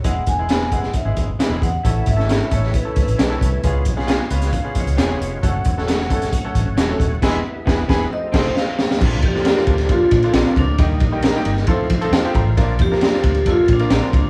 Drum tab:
CC |----------------|----------------|----------------|----------------|
RD |----------------|----------------|----------------|----------------|
HH |x-x-x-x-x-x-x-x-|x-x-x-x-x-xxx-x-|x-x-x-xxx-xxx-x-|x-x-x-xxx-x-x-x-|
SD |----o--o----o---|---oo--o----o---|---oo--o----o---|---ooo-o----o---|
BD |o-o---o-o-o---o-|o-o---o-o-o---o-|o-o-----o-o-----|o-o---o-o-o---o-|

CC |x---------x-----|x---------------|----------------|----------------|
RD |----------------|--x-x-xxx-xxx-x-|x-x-x-x-x-xxx-x-|x-x-x-xxx-xxx-x-|
HH |----------------|----------------|----------------|----------------|
SD |o---o-o---o-o-oo|---ooo-o----o---|----o--o----o---|---ooo------o---|
BD |o---o-o---o-----|o-o---o-o-o---o-|o-o-----o-o---o-|o-o---o-o-o---o-|